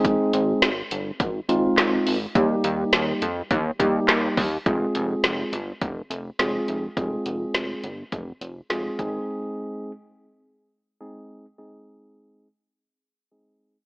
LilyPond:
<<
  \new Staff \with { instrumentName = "Tine electric piano" } { \time 4/4 \key f \minor \tempo 4 = 104 <aes c' ees' aes'>4 r4. <aes c' ees' f'>4 r8 | <g bes ees' g'>4. r4 <g bes ees' g'>4 r8 | <aes c' f' aes'>4. r4. <aes c' f' aes'>8. r16 | <aes c' f' aes'>4. r4. <aes c' f' aes'>8 <aes c' ees' aes'>8~ |
<aes c' ees' aes'>4 r2 <aes c' ees' aes'>8. r16 | <aes c' ees' aes'>4. r4. <aes c' ees' aes'>8. r16 | }
  \new Staff \with { instrumentName = "Analog synth bass" } { \clef bass \time 4/4 \key f \minor aes,,8 aes,,8 aes,,8 g,,8 aes,,8 aes,,8 aes,,8 aes,,8 | ees,8 ees,8 ees,8 f,8 ees,8 ees,8 ees,8 ees,8 | f,,8 f,,8 f,,8 g,,8 f,,8 f,,8 f,,8 f,,8 | f,,8 f,,8 f,,8 g,,8 f,,8 f,,8 f,,8 aes,,8 |
r1 | r1 | }
  \new DrumStaff \with { instrumentName = "Drums" } \drummode { \time 4/4 <hh bd>8 hh8 <hh sn>8 hh8 <hh bd>8 hh8 <hc hh sn>8 hho8 | <hh bd>8 hh8 <hh sn>8 hh8 <hh bd>8 <hh bd>8 <hc hh sn>8 <hho bd>8 | <hh bd>8 hh8 <hh sn>8 hh8 <hh bd>8 hh8 <hh sn>8 hh8 | <hh bd>8 hh8 <hh sn>8 hh8 <hh bd>8 hh8 <hh sn>8 <hh bd>8 |
r4 r4 r4 r4 | r4 r4 r4 r4 | }
>>